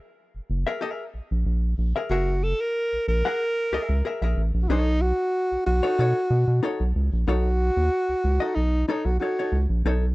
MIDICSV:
0, 0, Header, 1, 4, 480
1, 0, Start_track
1, 0, Tempo, 644468
1, 1572, Time_signature, 4, 2, 24, 8
1, 7559, End_track
2, 0, Start_track
2, 0, Title_t, "Hollow-body jazz guitar"
2, 0, Program_c, 0, 26
2, 496, Note_on_c, 0, 76, 85
2, 502, Note_on_c, 0, 70, 78
2, 505, Note_on_c, 0, 68, 71
2, 594, Note_off_c, 0, 68, 0
2, 602, Note_off_c, 0, 70, 0
2, 602, Note_off_c, 0, 76, 0
2, 602, Note_on_c, 0, 68, 82
2, 611, Note_on_c, 0, 70, 91
2, 611, Note_on_c, 0, 76, 96
2, 763, Note_off_c, 0, 68, 0
2, 768, Note_off_c, 0, 70, 0
2, 768, Note_off_c, 0, 76, 0
2, 1458, Note_on_c, 0, 76, 69
2, 1463, Note_on_c, 0, 70, 76
2, 1468, Note_on_c, 0, 68, 62
2, 1561, Note_off_c, 0, 68, 0
2, 1566, Note_off_c, 0, 70, 0
2, 1568, Note_off_c, 0, 76, 0
2, 1570, Note_on_c, 0, 68, 76
2, 1575, Note_on_c, 0, 70, 83
2, 1577, Note_on_c, 0, 76, 89
2, 1716, Note_off_c, 0, 68, 0
2, 1719, Note_off_c, 0, 70, 0
2, 1720, Note_off_c, 0, 76, 0
2, 2422, Note_on_c, 0, 78, 82
2, 2426, Note_on_c, 0, 70, 85
2, 2433, Note_on_c, 0, 68, 73
2, 2553, Note_off_c, 0, 78, 0
2, 2556, Note_off_c, 0, 70, 0
2, 2559, Note_off_c, 0, 68, 0
2, 2777, Note_on_c, 0, 68, 86
2, 2784, Note_on_c, 0, 70, 76
2, 2786, Note_on_c, 0, 76, 91
2, 2930, Note_off_c, 0, 68, 0
2, 2934, Note_off_c, 0, 70, 0
2, 2935, Note_off_c, 0, 76, 0
2, 3016, Note_on_c, 0, 68, 68
2, 3022, Note_on_c, 0, 70, 68
2, 3029, Note_on_c, 0, 76, 72
2, 3129, Note_off_c, 0, 68, 0
2, 3132, Note_off_c, 0, 70, 0
2, 3136, Note_off_c, 0, 76, 0
2, 3144, Note_on_c, 0, 76, 72
2, 3155, Note_on_c, 0, 70, 74
2, 3157, Note_on_c, 0, 68, 61
2, 3275, Note_off_c, 0, 76, 0
2, 3280, Note_off_c, 0, 70, 0
2, 3281, Note_off_c, 0, 68, 0
2, 3500, Note_on_c, 0, 63, 87
2, 3503, Note_on_c, 0, 69, 94
2, 3511, Note_on_c, 0, 73, 92
2, 3652, Note_off_c, 0, 63, 0
2, 3653, Note_off_c, 0, 69, 0
2, 3658, Note_off_c, 0, 73, 0
2, 4342, Note_on_c, 0, 73, 100
2, 4351, Note_on_c, 0, 69, 82
2, 4355, Note_on_c, 0, 63, 69
2, 4447, Note_off_c, 0, 63, 0
2, 4455, Note_off_c, 0, 69, 0
2, 4456, Note_on_c, 0, 63, 77
2, 4463, Note_off_c, 0, 73, 0
2, 4464, Note_on_c, 0, 69, 93
2, 4472, Note_on_c, 0, 73, 104
2, 4599, Note_off_c, 0, 63, 0
2, 4603, Note_off_c, 0, 69, 0
2, 4607, Note_off_c, 0, 73, 0
2, 4936, Note_on_c, 0, 63, 85
2, 4942, Note_on_c, 0, 69, 90
2, 4951, Note_on_c, 0, 73, 93
2, 5079, Note_off_c, 0, 63, 0
2, 5082, Note_off_c, 0, 69, 0
2, 5086, Note_off_c, 0, 73, 0
2, 5419, Note_on_c, 0, 63, 75
2, 5426, Note_on_c, 0, 69, 82
2, 5430, Note_on_c, 0, 73, 91
2, 5561, Note_off_c, 0, 63, 0
2, 5564, Note_off_c, 0, 69, 0
2, 5566, Note_off_c, 0, 73, 0
2, 6258, Note_on_c, 0, 75, 83
2, 6269, Note_on_c, 0, 63, 66
2, 6269, Note_on_c, 0, 69, 73
2, 6391, Note_off_c, 0, 75, 0
2, 6396, Note_off_c, 0, 69, 0
2, 6397, Note_off_c, 0, 63, 0
2, 6618, Note_on_c, 0, 63, 74
2, 6625, Note_on_c, 0, 69, 87
2, 6630, Note_on_c, 0, 73, 83
2, 6760, Note_off_c, 0, 63, 0
2, 6763, Note_off_c, 0, 69, 0
2, 6766, Note_off_c, 0, 73, 0
2, 6860, Note_on_c, 0, 63, 56
2, 6868, Note_on_c, 0, 69, 65
2, 6871, Note_on_c, 0, 73, 66
2, 6971, Note_off_c, 0, 63, 0
2, 6975, Note_off_c, 0, 69, 0
2, 6976, Note_off_c, 0, 73, 0
2, 6995, Note_on_c, 0, 73, 74
2, 6999, Note_on_c, 0, 69, 65
2, 7000, Note_on_c, 0, 63, 60
2, 7119, Note_off_c, 0, 73, 0
2, 7121, Note_off_c, 0, 69, 0
2, 7122, Note_off_c, 0, 63, 0
2, 7341, Note_on_c, 0, 63, 82
2, 7347, Note_on_c, 0, 69, 94
2, 7352, Note_on_c, 0, 73, 82
2, 7480, Note_off_c, 0, 63, 0
2, 7484, Note_off_c, 0, 69, 0
2, 7486, Note_off_c, 0, 73, 0
2, 7559, End_track
3, 0, Start_track
3, 0, Title_t, "Alto saxophone"
3, 0, Program_c, 1, 65
3, 1567, Note_on_c, 1, 66, 97
3, 1812, Note_on_c, 1, 69, 100
3, 1823, Note_off_c, 1, 66, 0
3, 1941, Note_on_c, 1, 70, 118
3, 1952, Note_off_c, 1, 69, 0
3, 2290, Note_off_c, 1, 70, 0
3, 2295, Note_on_c, 1, 70, 113
3, 3224, Note_off_c, 1, 70, 0
3, 3443, Note_on_c, 1, 66, 71
3, 3488, Note_on_c, 1, 63, 116
3, 3499, Note_off_c, 1, 66, 0
3, 3734, Note_on_c, 1, 66, 112
3, 3746, Note_off_c, 1, 63, 0
3, 4213, Note_off_c, 1, 66, 0
3, 4219, Note_on_c, 1, 66, 123
3, 5146, Note_off_c, 1, 66, 0
3, 5418, Note_on_c, 1, 66, 120
3, 6366, Note_on_c, 1, 63, 92
3, 6377, Note_off_c, 1, 66, 0
3, 6605, Note_off_c, 1, 63, 0
3, 6610, Note_on_c, 1, 63, 82
3, 6743, Note_on_c, 1, 66, 92
3, 6755, Note_off_c, 1, 63, 0
3, 6845, Note_off_c, 1, 66, 0
3, 6849, Note_on_c, 1, 66, 84
3, 7191, Note_off_c, 1, 66, 0
3, 7559, End_track
4, 0, Start_track
4, 0, Title_t, "Analog synth bass"
4, 0, Program_c, 2, 38
4, 256, Note_on_c, 2, 30, 52
4, 302, Note_off_c, 2, 30, 0
4, 369, Note_on_c, 2, 30, 101
4, 483, Note_off_c, 2, 30, 0
4, 848, Note_on_c, 2, 34, 54
4, 900, Note_off_c, 2, 34, 0
4, 977, Note_on_c, 2, 34, 93
4, 1078, Note_off_c, 2, 34, 0
4, 1084, Note_on_c, 2, 34, 97
4, 1299, Note_off_c, 2, 34, 0
4, 1326, Note_on_c, 2, 34, 86
4, 1441, Note_off_c, 2, 34, 0
4, 1562, Note_on_c, 2, 30, 124
4, 1890, Note_off_c, 2, 30, 0
4, 2178, Note_on_c, 2, 34, 53
4, 2224, Note_off_c, 2, 34, 0
4, 2292, Note_on_c, 2, 34, 90
4, 2404, Note_off_c, 2, 34, 0
4, 2770, Note_on_c, 2, 37, 57
4, 2821, Note_off_c, 2, 37, 0
4, 2896, Note_on_c, 2, 37, 94
4, 2997, Note_off_c, 2, 37, 0
4, 3140, Note_on_c, 2, 34, 87
4, 3239, Note_off_c, 2, 34, 0
4, 3252, Note_on_c, 2, 33, 86
4, 3364, Note_off_c, 2, 33, 0
4, 3381, Note_on_c, 2, 34, 98
4, 3480, Note_off_c, 2, 34, 0
4, 3495, Note_on_c, 2, 35, 121
4, 3817, Note_off_c, 2, 35, 0
4, 4107, Note_on_c, 2, 35, 56
4, 4150, Note_off_c, 2, 35, 0
4, 4221, Note_on_c, 2, 35, 101
4, 4329, Note_off_c, 2, 35, 0
4, 4460, Note_on_c, 2, 47, 85
4, 4569, Note_off_c, 2, 47, 0
4, 4695, Note_on_c, 2, 47, 111
4, 4806, Note_off_c, 2, 47, 0
4, 4823, Note_on_c, 2, 47, 99
4, 4921, Note_off_c, 2, 47, 0
4, 5065, Note_on_c, 2, 35, 88
4, 5162, Note_off_c, 2, 35, 0
4, 5180, Note_on_c, 2, 37, 86
4, 5288, Note_off_c, 2, 37, 0
4, 5308, Note_on_c, 2, 34, 90
4, 5403, Note_off_c, 2, 34, 0
4, 5415, Note_on_c, 2, 35, 116
4, 5737, Note_off_c, 2, 35, 0
4, 5784, Note_on_c, 2, 39, 84
4, 5881, Note_off_c, 2, 39, 0
4, 6023, Note_on_c, 2, 37, 53
4, 6067, Note_off_c, 2, 37, 0
4, 6139, Note_on_c, 2, 37, 99
4, 6248, Note_off_c, 2, 37, 0
4, 6378, Note_on_c, 2, 35, 77
4, 6586, Note_off_c, 2, 35, 0
4, 6741, Note_on_c, 2, 35, 92
4, 6839, Note_off_c, 2, 35, 0
4, 7091, Note_on_c, 2, 37, 90
4, 7203, Note_off_c, 2, 37, 0
4, 7219, Note_on_c, 2, 34, 99
4, 7318, Note_off_c, 2, 34, 0
4, 7334, Note_on_c, 2, 35, 112
4, 7559, Note_off_c, 2, 35, 0
4, 7559, End_track
0, 0, End_of_file